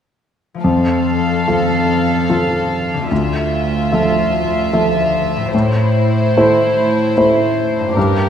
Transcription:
0.54 4.44 F3 soft
0.54 2.97 A3 soft
0.54 3.01 F4 soft
0.61 1.46 F2 soft
0.61 3.06 F2 soft
0.61 3.06 A4 soft
0.61 3.06 F5 soft
0.61 4.51 A5 soft
1.48 2.25 F3 soft
1.48 2.25 F4 soft
1.48 2.26 A4 soft
2.29 3.07 F3 soft
2.29 3.07 F4 soft
2.29 3.07 A4 soft
2.93 5.47 D3 soft
2.98 5.40 A3 soft
3.02 5.52 F4 soft
3.07 5.53 F4 soft
3.07 6.97 E5 soft
3.07 5.49 E5 soft
3.11 5.49 D2 soft
3.11 3.89 D2 soft
3.92 4.68 F3 soft
3.92 4.69 A4 soft
3.92 4.68 E5 soft
4.73 5.50 F3 soft
4.73 5.50 A4 soft
4.73 5.50 E5 soft
5.37 7.91 A2 soft
5.41 7.93 A3 soft
5.45 7.96 E4 soft
5.50 7.92 A2 soft
5.50 7.96 E4 soft
5.50 7.98 C5 soft
5.50 7.97 C5 soft
5.54 6.33 A2 soft
6.37 7.13 A3 soft
6.37 7.13 E4 soft
6.37 7.13 C5 soft
7.17 7.93 A3 soft
7.17 7.93 E4 soft
7.17 7.93 C5 soft
7.79 8.29 G2 soft
7.84 8.29 A#3 soft
7.88 8.29 G4 soft
7.92 8.29 G2 soft
7.92 8.29 D5 soft
7.96 8.29 G2 soft
7.96 8.29 G4 soft
7.96 8.29 A#4 soft

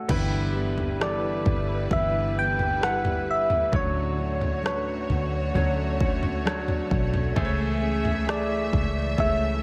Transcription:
0.00 0.11 A3 medium
0.00 0.11 F#4 medium
0.00 0.11 A4 medium
0.00 0.11 C#5 medium
0.00 0.11 E5 soft
0.00 0.12 F#5 medium
0.00 0.12 G#5 medium
0.00 0.11 A5 medium
0.09 1.42 G1 medium
0.09 0.54 G2 medium
0.09 1.42 G2 medium
0.09 0.55 D3 medium
0.09 7.33 D3 medium
0.09 1.42 D3 medium
0.09 0.55 E3 medium
0.09 0.95 G3 medium
0.09 3.69 G3 medium
0.09 0.55 G3 medium
0.09 0.54 B3 medium
0.09 3.69 E4 medium
0.09 0.96 E4 medium
0.09 0.53 G4 medium
0.09 3.69 B4 medium
0.09 0.96 B4 loud
0.09 kick loud
0.09 floor tom medium
0.09 crash medium
0.54 0.99 E3 soft
0.54 1.00 G3 soft
0.54 1.01 B3 soft
0.54 1.00 G4 soft
0.78 floor tom medium
1.00 1.91 E3 medium
1.00 1.86 G3 medium
1.00 1.92 G3 medium
1.00 1.92 B3 medium
1.00 1.87 E4 medium
1.00 1.92 G4 medium
1.00 1.87 A4 medium
1.00 1.88 D5 medium
1.00 cross-stick medium
1.45 1.88 G1 medium
1.45 kick medium
1.45 floor tom medium
1.91 3.69 G1 medium
1.91 2.37 G2 medium
1.91 2.37 D3 medium
1.91 2.37 E3 medium
1.91 2.77 G3 medium
1.91 2.37 G3 medium
1.91 2.36 B3 medium
1.91 2.78 E4 medium
1.91 2.35 G4 medium
1.91 2.78 B4 medium
1.91 2.40 E5 loud
1.91 kick medium
1.91 floor tom medium
2.36 3.73 E3 soft
2.36 3.73 G3 soft
2.36 3.73 B3 soft
2.36 3.73 G4 soft
2.36 2.86 G5 loud
2.59 floor tom medium
2.81 3.68 G3 medium
2.81 3.69 E4 medium
2.81 3.69 B4 medium
2.81 3.32 F#5 loud
2.81 cross-stick medium
3.05 floor tom medium
3.31 3.75 E5 medium
3.50 floor tom medium
3.72 5.05 D2 medium
3.72 5.05 A2 medium
3.72 4.18 D3 medium
3.72 4.59 F#3 medium
3.72 4.19 F#3 medium
3.72 9.63 A3 medium
3.72 4.19 A3 medium
3.72 4.18 C#4 medium
3.72 4.59 D4 medium
3.72 7.33 F#4 medium
3.72 4.16 F#4 medium
3.72 7.33 C#5 medium
3.72 4.60 C#5 medium
3.72 4.61 C#5 medium
3.72 kick loud
3.72 floor tom medium
4.18 4.63 A3 soft
4.18 4.64 C#4 soft
4.18 4.64 F#4 soft
4.41 floor tom soft
4.63 5.50 F#3 medium
4.63 5.54 F#3 medium
4.63 5.55 A3 medium
4.63 5.55 C#4 medium
4.63 5.50 D4 medium
4.63 5.55 F#4 medium
4.63 5.51 B4 medium
4.63 6.43 C#5 medium
4.63 cross-stick medium
5.10 5.52 D2 medium
5.10 floor tom medium
5.54 6.87 D2 medium
5.54 6.00 D3 medium
5.54 6.41 F#3 medium
5.54 6.00 F#3 medium
5.54 6.01 A3 medium
5.54 6.00 C#4 medium
5.54 6.41 D4 medium
5.54 5.98 F#4 medium
5.54 6.42 C#5 medium
5.54 floor tom medium
5.99 7.37 A3 soft
5.99 7.37 C#4 soft
5.99 7.36 F#4 medium
5.99 kick medium
6.23 floor tom medium
6.45 7.32 F#3 medium
6.45 7.32 D4 medium
6.45 7.33 C#5 medium
6.45 cross-stick medium
6.68 floor tom medium
6.91 7.33 B1 medium
6.91 kick medium
7.14 floor tom medium
7.36 8.69 C#2 medium
7.36 7.82 C#3 medium
7.36 8.69 C#3 medium
7.36 7.82 E3 medium
7.36 9.63 E3 medium
7.36 8.23 A3 loud
7.36 7.82 A3 medium
7.36 7.81 C#4 medium
7.36 8.23 G#4 medium
7.36 9.17 G#4 medium
7.36 7.80 G#4 medium
7.36 7.44 C5 medium
7.36 9.63 E5 medium
7.36 kick loud
7.36 floor tom medium
7.45 8.27 C#5 loud
7.81 8.26 A3 soft
7.81 8.28 C#4 soft
7.81 8.27 G#4 medium
8.05 floor tom medium
8.26 9.18 E3 medium
8.26 9.14 A3 medium
8.26 9.18 A3 medium
8.26 9.14 G#4 medium
8.26 9.18 G#4 medium
8.26 9.22 D5 medium
8.26 9.15 E5 medium
8.26 cross-stick loud
8.73 9.15 C#2 medium
8.73 kick medium
8.73 floor tom medium
9.17 9.63 C#2 medium
9.17 9.63 C#3 medium
9.17 9.63 E3 medium
9.17 9.63 A3 medium
9.17 9.63 C#4 medium
9.17 9.63 G#4 medium
9.17 9.61 G#4 medium
9.17 9.63 C#5 medium
9.17 9.63 E5 medium
9.17 kick medium
9.17 floor tom medium

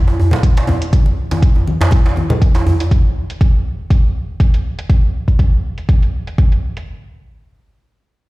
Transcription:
0.07 djembe tone medium
0.20 djembe bass medium
0.31 muted conga soft
0.31 djembe slap medium
0.31 djembe tone medium
0.31 low conga medium
0.43 kick loud
0.43 closed hi-hat medium
0.57 closed hi-hat soft
0.57 djembe slap medium
0.67 muted conga soft
0.67 djembe tone medium
0.67 high conga medium
0.67 low conga medium
0.82 closed hi-hat soft
0.93 kick loud
0.93 closed hi-hat medium
0.93 djembe tone medium
0.93 high conga medium
1.06 muted conga soft
1.31 closed hi-hat soft
1.31 djembe tone medium
1.31 high conga medium
1.42 kick loud
1.42 closed hi-hat medium
1.55 muted conga soft
1.55 djembe tone medium
1.67 high conga medium
1.81 djembe slap medium
1.81 djembe bass medium
1.91 kick loud
1.91 closed hi-hat medium
1.91 muted conga soft
1.91 high conga medium
1.91 djembe tone medium
2.06 djembe slap medium
2.16 djembe tone medium
2.16 high conga medium
2.30 muted conga soft
2.30 low conga loud
2.42 kick loud
2.42 closed hi-hat medium
2.55 closed hi-hat soft
2.55 djembe slap medium
2.55 djembe tone medium
2.66 muted conga soft
2.66 djembe bass medium
2.80 closed hi-hat soft
2.80 djembe tone medium
2.91 kick loud
2.91 closed hi-hat medium
3.30 closed hi-hat soft
3.41 kick loud
3.41 closed hi-hat medium
3.90 kick loud
3.90 closed hi-hat medium
4.40 kick loud
4.40 closed hi-hat medium
4.54 closed hi-hat soft
4.79 closed hi-hat soft
4.90 kick loud
4.90 closed hi-hat medium
5.28 kick medium
5.28 closed hi-hat soft
5.39 kick loud
5.39 closed hi-hat medium
5.78 closed hi-hat soft
5.89 kick loud
5.89 closed hi-hat medium
6.02 closed hi-hat soft
6.27 closed hi-hat soft
6.38 kick loud
6.38 closed hi-hat medium
6.52 closed hi-hat soft
6.77 closed hi-hat soft

